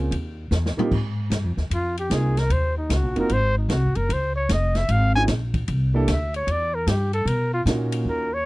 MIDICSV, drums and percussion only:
0, 0, Header, 1, 2, 480
1, 0, Start_track
1, 0, Key_signature, -4, "major"
1, 0, Tempo, 397088
1, 1106, Time_signature, 4, 2, 24, 8
1, 10222, End_track
2, 0, Start_track
2, 0, Title_t, "Drums"
2, 144, Note_on_c, 9, 51, 68
2, 265, Note_off_c, 9, 51, 0
2, 622, Note_on_c, 9, 44, 67
2, 623, Note_on_c, 9, 38, 63
2, 743, Note_off_c, 9, 44, 0
2, 744, Note_off_c, 9, 38, 0
2, 795, Note_on_c, 9, 38, 70
2, 916, Note_off_c, 9, 38, 0
2, 953, Note_on_c, 9, 43, 96
2, 1073, Note_off_c, 9, 43, 0
2, 1106, Note_on_c, 9, 36, 72
2, 1108, Note_on_c, 9, 49, 79
2, 1227, Note_off_c, 9, 36, 0
2, 1229, Note_off_c, 9, 49, 0
2, 1588, Note_on_c, 9, 44, 68
2, 1588, Note_on_c, 9, 51, 74
2, 1589, Note_on_c, 9, 38, 69
2, 1709, Note_off_c, 9, 44, 0
2, 1709, Note_off_c, 9, 51, 0
2, 1710, Note_off_c, 9, 38, 0
2, 1898, Note_on_c, 9, 38, 38
2, 2019, Note_off_c, 9, 38, 0
2, 2068, Note_on_c, 9, 51, 73
2, 2189, Note_off_c, 9, 51, 0
2, 2386, Note_on_c, 9, 51, 53
2, 2507, Note_off_c, 9, 51, 0
2, 2547, Note_on_c, 9, 44, 60
2, 2547, Note_on_c, 9, 51, 74
2, 2549, Note_on_c, 9, 38, 77
2, 2668, Note_off_c, 9, 44, 0
2, 2668, Note_off_c, 9, 51, 0
2, 2670, Note_off_c, 9, 38, 0
2, 2865, Note_on_c, 9, 51, 55
2, 2867, Note_on_c, 9, 38, 47
2, 2986, Note_off_c, 9, 51, 0
2, 2988, Note_off_c, 9, 38, 0
2, 3024, Note_on_c, 9, 51, 72
2, 3144, Note_off_c, 9, 51, 0
2, 3506, Note_on_c, 9, 44, 63
2, 3506, Note_on_c, 9, 51, 72
2, 3507, Note_on_c, 9, 38, 69
2, 3627, Note_off_c, 9, 44, 0
2, 3627, Note_off_c, 9, 51, 0
2, 3628, Note_off_c, 9, 38, 0
2, 3818, Note_on_c, 9, 51, 51
2, 3939, Note_off_c, 9, 51, 0
2, 3981, Note_on_c, 9, 51, 72
2, 4102, Note_off_c, 9, 51, 0
2, 4467, Note_on_c, 9, 44, 51
2, 4467, Note_on_c, 9, 51, 70
2, 4468, Note_on_c, 9, 38, 76
2, 4587, Note_off_c, 9, 44, 0
2, 4587, Note_off_c, 9, 51, 0
2, 4589, Note_off_c, 9, 38, 0
2, 4777, Note_on_c, 9, 51, 51
2, 4898, Note_off_c, 9, 51, 0
2, 4954, Note_on_c, 9, 51, 76
2, 5075, Note_off_c, 9, 51, 0
2, 5430, Note_on_c, 9, 44, 68
2, 5430, Note_on_c, 9, 51, 76
2, 5431, Note_on_c, 9, 38, 76
2, 5551, Note_off_c, 9, 44, 0
2, 5551, Note_off_c, 9, 51, 0
2, 5552, Note_off_c, 9, 38, 0
2, 5739, Note_on_c, 9, 51, 54
2, 5741, Note_on_c, 9, 38, 49
2, 5860, Note_off_c, 9, 51, 0
2, 5861, Note_off_c, 9, 38, 0
2, 5905, Note_on_c, 9, 51, 69
2, 6026, Note_off_c, 9, 51, 0
2, 6379, Note_on_c, 9, 44, 63
2, 6379, Note_on_c, 9, 51, 83
2, 6380, Note_on_c, 9, 38, 90
2, 6500, Note_off_c, 9, 44, 0
2, 6500, Note_off_c, 9, 51, 0
2, 6501, Note_off_c, 9, 38, 0
2, 6695, Note_on_c, 9, 36, 64
2, 6695, Note_on_c, 9, 51, 55
2, 6816, Note_off_c, 9, 36, 0
2, 6816, Note_off_c, 9, 51, 0
2, 6861, Note_on_c, 9, 51, 73
2, 6982, Note_off_c, 9, 51, 0
2, 7345, Note_on_c, 9, 44, 58
2, 7345, Note_on_c, 9, 51, 84
2, 7346, Note_on_c, 9, 38, 70
2, 7466, Note_off_c, 9, 44, 0
2, 7466, Note_off_c, 9, 51, 0
2, 7467, Note_off_c, 9, 38, 0
2, 7664, Note_on_c, 9, 51, 54
2, 7784, Note_off_c, 9, 51, 0
2, 7827, Note_on_c, 9, 51, 71
2, 7948, Note_off_c, 9, 51, 0
2, 8308, Note_on_c, 9, 44, 64
2, 8308, Note_on_c, 9, 51, 89
2, 8310, Note_on_c, 9, 38, 81
2, 8429, Note_off_c, 9, 44, 0
2, 8429, Note_off_c, 9, 51, 0
2, 8431, Note_off_c, 9, 38, 0
2, 8620, Note_on_c, 9, 51, 52
2, 8740, Note_off_c, 9, 51, 0
2, 8791, Note_on_c, 9, 51, 75
2, 8912, Note_off_c, 9, 51, 0
2, 9266, Note_on_c, 9, 44, 69
2, 9266, Note_on_c, 9, 51, 74
2, 9268, Note_on_c, 9, 38, 79
2, 9387, Note_off_c, 9, 44, 0
2, 9387, Note_off_c, 9, 51, 0
2, 9389, Note_off_c, 9, 38, 0
2, 9575, Note_on_c, 9, 51, 80
2, 9696, Note_off_c, 9, 51, 0
2, 10222, End_track
0, 0, End_of_file